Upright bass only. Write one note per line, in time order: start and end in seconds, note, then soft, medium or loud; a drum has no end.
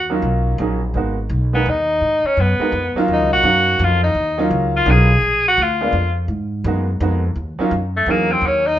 0.00 0.21 D#2 medium
0.22 0.57 B1 medium
0.58 0.93 A#1 loud
0.94 1.29 G#1 medium
1.29 1.64 B1 loud
1.65 2.00 D#2 medium
2.01 2.22 G#2 medium
2.24 muted upright bass stroke soft
2.37 2.58 F#2 loud
2.59 muted upright bass stroke soft
2.72 2.94 F2 loud
2.95 muted upright bass stroke soft
3.08 3.20 D#2 medium
3.20 3.31 C#2 medium
3.32 3.42 A#1 medium
3.43 3.78 F#2 loud
3.79 4.14 F2 loud
4.15 4.50 D#2 medium
4.50 4.85 C#2 loud
4.86 5.21 B1 loud
5.21 5.57 A#1 medium
5.57 5.92 D2 medium
5.92 6.27 F2 loud
6.28 6.63 G#2 medium
6.64 6.99 F#2 loud
7.00 7.35 F2 loud
7.36 7.57 D#2 medium
7.59 muted upright bass stroke soft
7.71 8.06 F#2 medium
8.06 8.41 E2 loud
8.41 8.77 D#2 medium